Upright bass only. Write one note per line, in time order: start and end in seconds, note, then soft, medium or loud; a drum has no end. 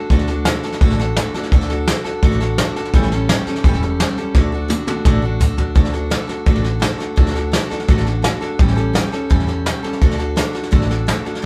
0.10 0.48 D2 medium
0.63 muted upright bass stroke medium
0.81 1.18 A1 medium
1.33 muted upright bass stroke medium
1.52 1.89 D2 medium
2.05 muted upright bass stroke medium
2.22 2.60 A1 medium
2.75 muted upright bass stroke medium
2.94 3.31 A1 medium
3.46 muted upright bass stroke medium
3.64 4.01 E1 loud
4.17 muted upright bass stroke medium
4.35 4.72 D2 medium
4.88 muted upright bass stroke medium
5.05 5.42 A1 medium
5.58 muted upright bass stroke medium
5.75 6.13 D2 medium
6.29 muted upright bass stroke medium
6.46 6.84 A1 medium
7.00 muted upright bass stroke medium
7.17 7.55 D2 loud
7.71 muted upright bass stroke medium
7.88 8.26 A1 medium
8.41 muted upright bass stroke medium
8.59 8.97 A1 loud
9.12 muted upright bass stroke medium
9.30 9.68 E2 medium
9.84 muted upright bass stroke medium
10.01 10.39 D2 medium
10.55 muted upright bass stroke medium
10.72 11.10 A1 medium
11.26 muted upright bass stroke medium